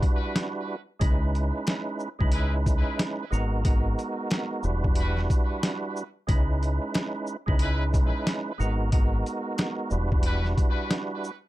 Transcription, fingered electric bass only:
1.01 C#2
2.21 C#2
3.32 G#1
4.64 E1
6.29 C#2
7.48 C#2
8.60 G#1
9.92 E1

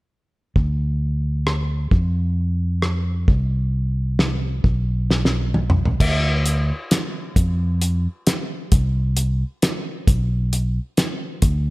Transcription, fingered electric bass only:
0.56 D2
1.91 F2
3.28 C2
4.64 B1
6.00 D2
7.36 F2
8.72 C2
10.08 B1
11.42 D2

